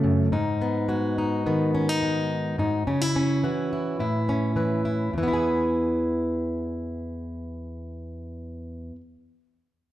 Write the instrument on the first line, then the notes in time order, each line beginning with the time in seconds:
steel-string acoustic guitar
Already playing: C#3 F#3 A3 C#4 G#4
0.04 F#2
0.32 G#2 D#4
0.61 B3
0.88 G#3 F#4
1.18 D#4
1.46 D#3 B3
1.74 C#4
1.89 D#4
2.03 G#3
2.58 G#2 D#4
2.87 C#3 C#4
3.02 E4
3.16 C#4
3.43 E3 F#4
3.73 E4
3.99 A2 E4
4.29 C#4
4.56 E3 B4
4.85 E4
5.13 E2
5.18 E3
5.23 B3
5.28 E4
5.33 G#4